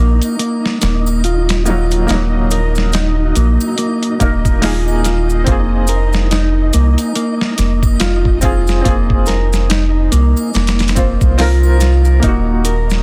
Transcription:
0.00 0.20 A#1 medium
0.00 0.36 A#3 loud
0.00 1.61 A#3 medium
0.00 1.63 D#4 medium
0.00 13.03 D#4 medium
0.00 1.65 F#4 medium
0.22 closed hi-hat soft
0.22 triangle medium
0.22 maracas medium
0.39 0.78 A#3 medium
0.39 closed hi-hat medium
0.39 maracas soft
0.66 snare medium
0.81 2.06 D#1 loud
0.81 1.22 A#3 medium
0.81 snare loud
0.81 closed hi-hat medium
0.81 maracas medium
1.06 triangle medium
1.06 maracas medium
1.24 1.65 F4 medium
1.24 closed hi-hat medium
1.24 maracas soft
1.49 snare medium
1.49 closed hi-hat medium
1.66 2.04 A#3 medium
1.66 2.05 D#4 medium
1.66 2.05 F4 medium
1.66 triangle medium
1.66 maracas loud
1.70 2.06 F#3 medium
1.91 closed hi-hat medium
1.91 maracas medium
2.07 3.32 D#1 loud
2.07 4.15 A#3 medium
2.07 2.48 A#3 medium
2.07 4.17 D#4 medium
2.07 snare loud
2.07 closed hi-hat medium
2.07 maracas soft
2.14 4.18 F#3 medium
2.51 2.92 A#4 medium
2.51 closed hi-hat medium
2.51 maracas medium
2.75 snare soft
2.75 maracas medium
2.92 3.34 D#4 medium
2.92 snare loud
2.92 closed hi-hat medium
2.92 maracas soft
3.35 3.57 A#1 medium
3.35 3.75 A#3 loud
3.35 closed hi-hat medium
3.35 maracas medium
3.60 triangle medium
3.60 maracas medium
3.78 4.17 A#3 loud
3.78 closed hi-hat medium
3.78 maracas soft
4.03 closed hi-hat soft
4.20 5.44 D#1 loud
4.20 4.58 A#3 medium
4.20 4.61 A#3 medium
4.20 4.59 D#4 medium
4.20 4.60 A#4 medium
4.20 kick medium
4.20 closed hi-hat medium
4.20 maracas medium
4.45 kick loud
4.45 maracas soft
4.62 5.42 A#3 loud
4.62 5.43 D#4 medium
4.62 5.03 F4 medium
4.62 5.44 G#4 loud
4.62 snare loud
4.62 open hi-hat medium
4.62 maracas soft
4.88 triangle medium
5.04 5.43 F4 medium
5.04 snare soft
5.04 closed hi-hat medium
5.04 maracas medium
5.30 maracas medium
5.44 6.71 F1 loud
5.44 5.86 A#3 medium
5.44 8.37 C4 medium
5.44 8.39 F4 medium
5.44 kick loud
5.44 closed hi-hat medium
5.44 maracas soft
5.51 8.41 G#4 medium
5.87 6.30 A#4 medium
5.87 closed hi-hat medium
5.87 maracas loud
6.13 snare medium
6.13 maracas soft
6.31 6.72 D#4 medium
6.31 snare loud
6.31 closed hi-hat medium
6.31 maracas soft
6.73 6.96 C2 medium
6.73 7.13 A#3 loud
6.73 closed hi-hat medium
6.73 maracas medium
6.98 closed hi-hat soft
6.98 triangle medium
6.98 maracas medium
7.15 7.55 A#3 loud
7.15 closed hi-hat medium
7.15 maracas soft
7.41 snare medium
7.58 8.82 F1 loud
7.58 7.99 A#3 medium
7.58 snare soft
7.58 closed hi-hat medium
7.58 maracas medium
7.83 kick loud
7.83 triangle medium
7.83 maracas medium
8.00 8.41 F4 loud
8.00 snare loud
8.00 closed hi-hat medium
8.00 maracas soft
8.25 kick medium
8.41 8.80 C4 medium
8.41 8.81 F4 loud
8.41 8.81 F4 medium
8.41 8.82 G#4 medium
8.41 kick loud
8.41 closed hi-hat medium
8.41 triangle medium
8.41 maracas loud
8.67 snare medium
8.67 maracas medium
8.81 9.24 A#3 medium
8.81 10.90 C4 medium
8.81 10.92 F4 medium
8.85 10.09 F1 loud
8.85 10.94 G#4 medium
8.85 kick loud
8.85 closed hi-hat medium
8.85 maracas soft
9.10 kick loud
9.26 9.68 A#4 medium
9.26 snare soft
9.26 closed hi-hat medium
9.26 maracas medium
9.53 snare soft
9.53 maracas medium
9.70 10.10 D#4 medium
9.70 snare loud
9.70 closed hi-hat medium
9.70 maracas soft
10.12 10.34 C2 medium
10.12 10.50 A#3 loud
10.12 closed hi-hat medium
10.12 maracas medium
10.37 triangle medium
10.37 maracas medium
10.54 11.17 F1 medium
10.54 10.93 A#3 loud
10.54 snare medium
10.54 closed hi-hat medium
10.54 maracas soft
10.67 snare medium
10.67 closed hi-hat medium
10.79 snare medium
10.79 closed hi-hat medium
10.88 snare medium
10.88 closed hi-hat medium
10.95 11.37 A#3 medium
10.95 11.34 C4 medium
10.95 11.35 F4 medium
10.95 11.36 C5 medium
10.95 kick medium
10.95 closed hi-hat medium
10.95 maracas medium
11.21 12.20 C2 medium
11.21 kick loud
11.21 maracas medium
11.38 12.18 C4 loud
11.38 11.79 F4 loud
11.38 12.19 F4 medium
11.38 12.20 A#4 loud
11.38 snare loud
11.38 open hi-hat medium
11.38 maracas soft
11.63 triangle medium
11.80 12.19 F4 loud
11.80 snare soft
11.80 closed hi-hat medium
11.80 maracas medium
12.05 maracas soft
12.20 13.03 D#1 loud
12.20 13.03 A#3 medium
12.20 12.62 A#3 medium
12.20 13.03 D#4 medium
12.20 kick loud
12.20 closed hi-hat medium
12.20 maracas soft
12.27 13.03 F#4 medium
12.65 13.03 A#4 medium
12.65 closed hi-hat medium
12.65 maracas medium
12.90 snare medium
12.90 maracas medium

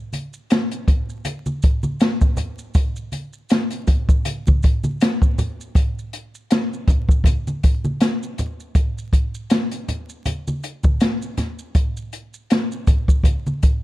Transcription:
0.13 closed hi-hat medium
0.13 high conga soft
0.13 maracas soft
0.33 maracas soft
0.50 snare loud
0.50 closed hi-hat medium
0.50 maracas medium
0.71 closed hi-hat medium
0.71 maracas soft
0.88 kick medium
0.88 closed hi-hat medium
0.88 low conga medium
0.88 maracas soft
1.09 maracas medium
1.25 closed hi-hat medium
1.25 high conga soft
1.25 maracas medium
1.46 high conga medium
1.46 maracas soft
1.62 kick medium
1.62 closed hi-hat medium
1.62 maracas soft
1.83 high conga medium
1.83 maracas soft
2.00 snare loud
2.00 closed hi-hat medium
2.00 maracas medium
2.21 kick medium
2.21 maracas soft
2.37 closed hi-hat medium
2.37 low conga medium
2.37 maracas soft
2.58 maracas soft
2.74 kick loud
2.74 closed hi-hat medium
2.74 maracas medium
2.96 maracas soft
3.12 closed hi-hat medium
3.12 high conga soft
3.12 maracas soft
3.33 maracas soft
3.49 snare loud
3.49 closed hi-hat medium
3.49 maracas medium
3.70 closed hi-hat medium
3.70 maracas soft
3.87 kick medium
3.87 closed hi-hat medium
3.87 low conga medium
3.87 maracas soft
4.09 kick medium
4.09 maracas medium
4.25 closed hi-hat medium
4.25 high conga soft
4.25 maracas medium
4.47 kick medium
4.47 high conga medium
4.47 maracas soft
4.63 kick medium
4.63 closed hi-hat medium
4.63 maracas soft
4.84 high conga medium
4.84 maracas soft
5.01 snare loud
5.01 closed hi-hat loud
5.01 maracas medium
5.22 kick medium
5.22 maracas soft
5.38 closed hi-hat soft
5.38 low conga medium
5.38 maracas soft
5.61 maracas soft
5.75 kick loud
5.75 closed hi-hat medium
5.75 maracas medium
5.99 maracas soft
6.13 closed hi-hat medium
6.13 maracas soft
6.35 maracas soft
6.51 snare loud
6.51 closed hi-hat medium
6.51 maracas medium
6.73 maracas soft
6.88 kick medium
6.88 closed hi-hat medium
6.88 low conga medium
6.88 maracas soft
7.09 kick medium
7.09 maracas soft
7.24 kick medium
7.24 closed hi-hat medium
7.24 high conga soft
7.24 low conga medium
7.24 maracas medium
7.47 high conga medium
7.47 maracas soft
7.63 kick medium
7.63 closed hi-hat medium
7.63 maracas soft
7.84 high conga medium
7.84 maracas soft
8.01 snare loud
8.01 closed hi-hat medium
8.01 maracas medium
8.23 maracas soft
8.38 closed hi-hat soft
8.38 low conga medium
8.38 maracas soft
8.60 maracas soft
8.75 kick loud
8.75 closed hi-hat medium
8.75 maracas medium
8.98 maracas soft
9.13 kick medium
9.13 closed hi-hat medium
9.13 maracas soft
9.35 maracas soft
9.50 snare loud
9.50 closed hi-hat medium
9.50 maracas medium
9.71 closed hi-hat medium
9.71 maracas soft
9.88 closed hi-hat medium
9.88 low conga medium
9.88 maracas soft
10.09 maracas soft
10.26 closed hi-hat medium
10.26 high conga soft
10.26 low conga medium
10.26 maracas medium
10.48 high conga medium
10.48 maracas soft
10.63 closed hi-hat medium
10.63 maracas soft
10.83 kick medium
10.83 high conga medium
10.83 maracas soft
11.00 snare loud
11.00 closed hi-hat medium
11.00 maracas medium
11.22 maracas soft
11.37 snare soft
11.37 closed hi-hat medium
11.37 low conga medium
11.37 maracas soft
11.59 maracas soft
11.75 kick loud
11.75 closed hi-hat medium
11.75 maracas medium
11.97 maracas soft
12.12 closed hi-hat medium
12.12 maracas soft
12.34 maracas soft
12.50 snare loud
12.50 closed hi-hat medium
12.50 maracas medium
12.72 maracas soft
12.87 kick medium
12.87 closed hi-hat medium
12.87 low conga medium
12.87 maracas soft
13.08 kick medium
13.08 maracas medium
13.23 kick medium
13.23 closed hi-hat medium
13.23 high conga soft
13.23 low conga medium
13.23 maracas medium
13.47 high conga medium
13.47 maracas soft
13.63 kick medium
13.63 closed hi-hat medium
13.63 maracas soft

